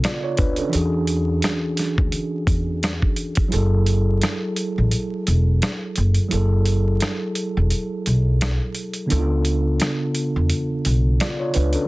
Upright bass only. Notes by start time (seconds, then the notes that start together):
0.39 C#2
0.74 E2
1.98 D2
2.47 E2
3.53 F#1
4.78 A1
5.28 E1
5.97 F#1
6.32 F#1
7.57 E1
8.07 B1
9.11 C#2
10.36 E2
10.86 B1
11.56 C#2